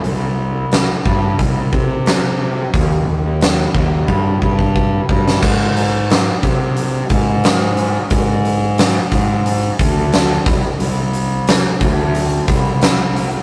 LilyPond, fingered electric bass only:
\new Staff \with { instrumentName = "Fingered electric bass" } { \clef bass \time 4/4 \key c \minor \tempo 4 = 89 c,4. g,8 c,8 c4. | ees,8 ees,4 ees,8 g,8 g,4 g,8 | aes,4. c4 aes,4. | aes,4. aes,4 d,4 c,16 r16 |
c,4. d,4 c,4. | }